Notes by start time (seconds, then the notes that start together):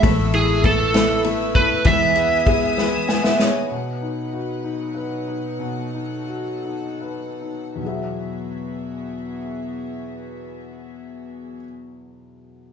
Already playing: E4
0.02 A1 A3 B3 E4 A4 B4 E5 E6, kick, ride
0.33 B3 E4 G#4, ride
0.63 A3 B3 E4 A4, kick, ride
0.93 A3 B3 E4 A4, snare, ride
1.24 A3 B3 E4 A4, ride
1.54 B3 E4 A4 B4, kick, ride
1.84 E2 E3 G#3 B3 G#4 E5 G#5 D#6, kick, ride
2.15 B3 G#4, ride
2.46 G#3 B3 G#4, kick, ride
2.77 E3 G#3 B3 G#4 B4, snare
3.08 G#3 B3 G#4 G#5, snare
3.24 E5, snare
3.39 B3 D#4 G#4 C#5, snare
3.71 B2 F#3 D#4 B4 F#5
4.01 D#4
4.33 F#4
4.64 D#4
4.95 B4
5.27 D#4
5.60 B2 A4
5.94 D#4
6.27 F#4
6.64 D#4
7.01 B4
7.41 D#4
7.75 E2 B2
7.80 E3 F#3 B3 F#4 G#4 E5
7.85 G#4 E5